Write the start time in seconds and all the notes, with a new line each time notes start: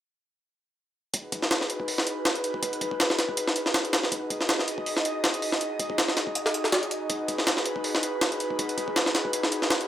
1.14 D#4 F#4 G#4 B4, kick, closed hi-hat
1.32 kick, closed hi-hat
1.42 snare
1.51 snare, closed hi-hat
1.61 snare
1.70 closed hi-hat
1.80 kick
1.88 open hi-hat
1.98 snare
2.07 closed hi-hat
2.25 snare, closed hi-hat
2.35 closed hi-hat
2.44 closed hi-hat
2.54 kick
2.63 kick, closed hi-hat
2.73 closed hi-hat
2.81 kick, closed hi-hat
2.91 kick
3.00 snare, closed hi-hat
3.10 snare
3.19 snare, closed hi-hat
3.29 kick
3.37 closed hi-hat
3.48 snare
3.56 closed hi-hat
3.66 snare
3.74 snare, closed hi-hat
3.85 closed hi-hat
3.93 snare, closed hi-hat
4.03 snare
4.12 D#5, kick, closed hi-hat
4.30 kick, closed hi-hat
4.41 snare
4.49 snare, closed hi-hat
4.59 snare
4.68 closed hi-hat
4.78 kick
4.86 open hi-hat
4.97 snare
5.05 closed hi-hat
5.24 snare, closed hi-hat
5.34 closed hi-hat
5.42 open hi-hat
5.52 snare
5.61 closed hi-hat
5.79 kick, closed hi-hat
5.90 kick
5.98 snare, closed hi-hat
6.08 snare
6.17 snare, closed hi-hat
6.27 kick
6.35 closed hi-hat
6.46 snare
6.54 closed hi-hat
6.64 snare
6.72 snare, closed hi-hat
6.83 closed hi-hat
6.91 closed hi-hat
7.10 B4, kick, closed hi-hat
7.28 kick, closed hi-hat
7.38 snare
7.47 snare, closed hi-hat
7.57 snare
7.66 closed hi-hat
7.76 kick
7.84 open hi-hat
7.95 snare
8.03 closed hi-hat
8.21 snare, closed hi-hat
8.32 closed hi-hat
8.40 closed hi-hat
8.50 kick
8.59 kick, closed hi-hat
8.69 closed hi-hat
8.78 kick, closed hi-hat
8.88 kick
8.96 snare, closed hi-hat
9.06 snare
9.15 snare, closed hi-hat
9.25 kick
9.33 closed hi-hat
9.43 snare
9.52 closed hi-hat
9.62 snare
9.70 snare, closed hi-hat
9.81 closed hi-hat